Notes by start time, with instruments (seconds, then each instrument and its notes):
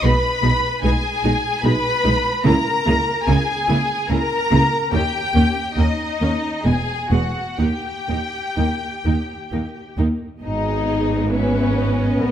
0.03 double bass section B1, cello section B2, viola section G#3 D#4, violin section B4 B5
0.43 double bass section B1, cello section B2, viola section G#3 D#4
0.83 double bass section B1, cello section B2, viola section G#3 D#4, violin section G#4 G#5
1.23 double bass section B1, cello section B2, viola section G#3 D#4
1.63 double bass section B1, cello section B2, viola section G#3 D#4, violin section B4 B5
2.04 double bass section B1, cello section B2, viola section G#3 D#4
2.44 double bass section C#2, cello section C#3, viola section A#3 E4, violin section A#4 A#5
2.86 double bass section C#2, cello section C#3, viola section A#3 E4
3.27 double bass section C#2, cello section C#3, viola section A#3 E4, violin section G#4 G#5
3.68 double bass section C#2, cello section C#3, viola section A#3 E4
4.10 double bass section C#2, cello section C#3, viola section A#3 E4, violin section A#4 A#5
4.51 double bass section C#2, cello section C#3, viola section A#3 E4
4.92 cello section D#2, double bass section D#2, viola section A#3 C#4, violin section G4 G5
5.34 cello section D#2, double bass section D#2, viola section A#3 C#4
5.77 double bass section D#2, cello section D#2, viola section A#3 C#4, violin section D#4 D#5
6.20 cello section D#2, double bass section D#2, viola section A#3 C#4
6.65 double bass section E1, cello section E2, viola section G#3 B3, violin section G#4 G#5
7.11 double bass section E1, cello section E2, viola section G#3 B3, violin section F#4 F#5
7.59 double bass section D#2, cello section D#2, viola section A#3 D#4, violin section G4 G5
8.09 double bass section D#2, cello section D#2, viola section A#3 D#4
8.57 double bass section D#2, cello section D#2, viola section A#3 D#4
9.05 double bass section D#2, cello section D#2, viola section A#3 D#4
9.52 double bass section D#2, cello section D#2, viola section A#3 D#4
9.97 double bass section D#2, cello section D#2, viola section A#3 D#4
10.42 double bass section G#1, cello section G#2, viola section B3 G#4, violin section D#4 D#5
11.32 violin section C#4 E5, viola section B4
11.77 violin section D#5
12.19 double bass section A#1, cello section A#2, violin section B3, viola section A#4